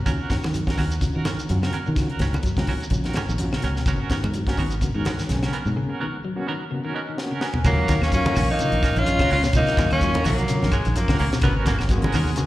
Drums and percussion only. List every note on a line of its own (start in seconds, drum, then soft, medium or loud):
0.06 kick medium
0.06 closed hi-hat medium
0.06 claves medium
0.06 shekere medium
0.30 kick medium
0.30 snare medium
0.30 closed hi-hat soft
0.30 shekere medium
0.42 snare soft
0.42 high conga medium
0.42 claves medium
0.42 shekere soft
0.54 closed hi-hat medium
0.54 high conga medium
0.54 shekere medium
0.67 kick medium
0.67 snare medium
0.67 closed hi-hat soft
0.77 kick medium
0.77 snare soft
0.77 open hi-hat medium
0.77 high conga medium
0.77 claves medium
0.77 shekere soft
0.91 closed hi-hat soft
0.91 shekere medium
1.01 kick medium
1.01 closed hi-hat medium
1.01 shekere medium
1.25 snare medium
1.25 closed hi-hat soft
1.25 high conga loud
1.25 claves medium
1.25 shekere medium
1.39 closed hi-hat soft
1.39 shekere medium
1.49 closed hi-hat medium
1.49 high conga medium
1.49 shekere medium
1.63 snare medium
1.63 claves medium
1.73 closed hi-hat soft
1.73 high conga medium
1.73 shekere soft
1.86 shekere soft
1.96 kick medium
1.96 snare soft
1.96 closed hi-hat medium
1.96 claves medium
1.96 shekere medium
2.09 closed hi-hat soft
2.19 kick medium
2.19 snare medium
2.19 closed hi-hat soft
2.19 shekere medium
2.33 closed hi-hat soft
2.33 high conga medium
2.33 claves medium
2.33 shekere soft
2.43 kick medium
2.43 closed hi-hat medium
2.43 shekere medium
2.57 kick medium
2.57 snare medium
2.57 closed hi-hat soft
2.57 high conga medium
2.67 kick medium
2.67 open hi-hat medium
2.67 high conga medium
2.67 claves medium
2.67 shekere soft
2.80 closed hi-hat soft
2.80 shekere medium
2.90 kick medium
2.90 closed hi-hat medium
2.90 shekere medium
3.04 snare soft
3.04 closed hi-hat soft
3.13 snare medium
3.13 closed hi-hat soft
3.13 high conga loud
3.13 claves medium
3.13 shekere medium
3.29 shekere medium
3.38 closed hi-hat medium
3.38 high conga medium
3.38 shekere medium
3.53 snare medium
3.53 claves medium
3.62 snare soft
3.62 closed hi-hat soft
3.62 high conga medium
3.62 shekere soft
3.76 snare soft
3.76 shekere soft
3.86 kick medium
3.86 closed hi-hat medium
3.86 claves medium
3.86 shekere medium
4.10 kick medium
4.10 snare medium
4.10 closed hi-hat soft
4.10 shekere medium
4.23 high conga medium
4.23 claves medium
4.23 shekere soft
4.34 closed hi-hat medium
4.34 shekere medium
4.47 kick medium
4.47 snare medium
4.47 closed hi-hat soft
4.57 kick medium
4.57 open hi-hat medium
4.57 high conga medium
4.57 claves medium
4.57 shekere soft
4.71 closed hi-hat soft
4.71 shekere medium
4.81 kick medium
4.81 closed hi-hat medium
4.81 high conga medium
4.81 shekere medium
5.05 snare medium
5.05 closed hi-hat soft
5.05 high conga medium
5.05 claves medium
5.05 shekere medium
5.19 snare soft
5.19 closed hi-hat soft
5.19 shekere medium
5.29 snare soft
5.29 closed hi-hat medium
5.29 high conga medium
5.29 shekere medium
5.43 snare medium
5.43 claves medium
5.53 closed hi-hat soft
5.53 shekere soft
5.66 shekere soft
7.18 snare soft
7.41 snare medium
7.54 floor tom medium
7.65 kick loud
7.65 closed hi-hat medium
7.65 low conga medium
7.65 claves medium
7.65 shekere medium
7.88 kick medium
7.88 snare soft
7.88 closed hi-hat medium
7.88 high conga medium
7.88 shekere medium
8.02 snare soft
8.02 claves medium
8.02 shekere soft
8.12 kick medium
8.12 closed hi-hat medium
8.12 shekere medium
8.25 closed hi-hat soft
8.25 high conga loud
8.36 open hi-hat medium
8.36 high conga medium
8.36 low conga medium
8.36 claves medium
8.36 shekere medium
8.50 shekere soft
8.59 closed hi-hat medium
8.59 shekere medium
8.72 closed hi-hat soft
8.83 kick medium
8.83 snare soft
8.83 closed hi-hat medium
8.83 claves medium
8.83 shekere loud
8.96 closed hi-hat soft
8.96 shekere soft
9.06 closed hi-hat medium
9.06 shekere loud
9.19 kick medium
9.19 snare medium
9.19 closed hi-hat soft
9.19 high conga medium
9.19 claves medium
9.30 open hi-hat medium
9.30 shekere soft
9.43 snare medium
9.43 closed hi-hat soft
9.43 shekere medium
9.53 kick loud
9.53 closed hi-hat medium
9.53 low conga medium
9.53 claves medium
9.53 shekere medium
9.67 snare soft
9.67 closed hi-hat soft
9.77 kick medium
9.77 snare soft
9.77 closed hi-hat medium
9.77 high conga loud
9.77 shekere medium
9.90 closed hi-hat soft
9.90 high conga medium
9.90 claves medium
9.90 shekere soft
10.01 kick medium
10.01 closed hi-hat medium
10.01 shekere medium
10.14 closed hi-hat soft
10.14 high conga loud
10.24 open hi-hat medium
10.24 high conga medium
10.24 low conga medium
10.24 claves medium
10.24 shekere medium
10.38 closed hi-hat soft
10.38 low conga medium
10.38 shekere soft
10.48 closed hi-hat medium
10.48 shekere medium
10.63 snare soft
10.63 high conga medium
10.72 kick medium
10.72 closed hi-hat soft
10.72 claves medium
10.72 shekere medium
10.85 closed hi-hat soft
10.85 shekere soft
10.96 closed hi-hat medium
10.96 shekere loud
11.08 kick medium
11.08 snare medium
11.08 high conga medium
11.08 claves medium
11.19 open hi-hat medium
11.19 shekere soft
11.32 snare medium
11.32 closed hi-hat soft
11.32 shekere medium
11.41 kick loud
11.41 closed hi-hat medium
11.41 low conga medium
11.41 claves medium
11.41 shekere medium
11.66 kick medium
11.66 snare soft
11.66 closed hi-hat medium
11.66 high conga loud
11.66 shekere loud
11.79 snare soft
11.79 claves medium
11.79 shekere soft
11.89 kick medium
11.89 closed hi-hat medium
11.89 shekere medium
12.02 closed hi-hat soft
12.02 high conga loud
12.12 open hi-hat medium
12.12 high conga medium
12.12 low conga medium
12.12 claves medium
12.12 shekere medium
12.27 shekere soft
12.36 closed hi-hat medium
12.36 shekere medium